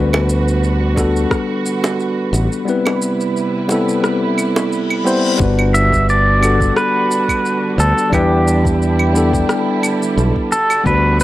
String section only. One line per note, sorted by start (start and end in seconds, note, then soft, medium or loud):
0.00 2.63 D3 medium
0.00 2.63 G3 medium
0.00 2.64 F#4 medium
0.00 2.63 B4 medium
2.66 5.37 C3 medium
2.66 5.37 G3 medium
2.66 5.37 E4 medium
2.66 5.37 B4 medium
5.40 11.24 D3 medium
5.40 8.10 G3 medium
5.40 11.24 D4 medium
5.40 8.10 F#4 medium
8.12 11.24 G3 medium
8.12 10.49 E4 medium
10.51 11.24 F#4 medium